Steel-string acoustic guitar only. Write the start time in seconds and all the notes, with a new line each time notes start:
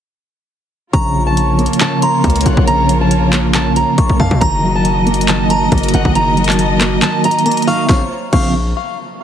0.93 A#5
1.27 A5
1.81 A5
2.03 A#5
2.46 F#5
2.67 A#5
3.01 A5
3.55 A5
3.76 A#5
4.20 F5
4.41 A#5
4.75 A5
5.29 A5
5.51 A#5
5.95 F#5
6.15 A#5
6.48 A5
7.02 A5
7.25 A#5
7.67 F5
7.89 F5
8.33 F5